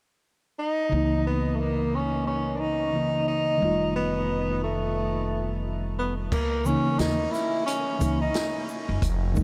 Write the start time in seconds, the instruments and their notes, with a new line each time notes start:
0.59 tenor saxophone D#4
0.89 upright bass C#2, tine electric piano C#3 E3
0.94 tine electric piano A#3 D#4
1.27 tenor saxophone B3
1.55 tenor saxophone A3
1.61 tenor saxophone A#3
1.95 tenor saxophone C#4
2.27 tenor saxophone C#4
2.56 tenor saxophone D4
2.60 tenor saxophone D#4
2.93 tine electric piano C#3 E3 A#3 D#4
3.28 tenor saxophone D#4
3.58 tine electric piano D#3 G3
3.62 upright bass F1, tine electric piano A3 F4
3.96 tenor saxophone B3
4.63 tenor saxophone A3
5.99 tenor saxophone B3
6.32 upright bass C#2, tenor saxophone A#3, kick, crash
6.65 tine electric piano C#3 E3 A#3 D#4, tenor saxophone C#4, shaker
6.99 upright bass D#2, tenor saxophone D#4, snare, closed hi-hat
7.31 tenor saxophone E4, snare, shaker
7.66 tenor saxophone C#4, closed hi-hat
7.99 upright bass C#2, tine electric piano C#3 E3 A#3 D#4, kick, closed hi-hat, shaker
8.21 tenor saxophone D#4
8.34 snare, closed hi-hat
8.69 shaker
8.89 upright bass F#1
9.02 upright bass F1, kick, closed hi-hat
9.34 tine electric piano D#3 G3 A3 D#4, kick, shaker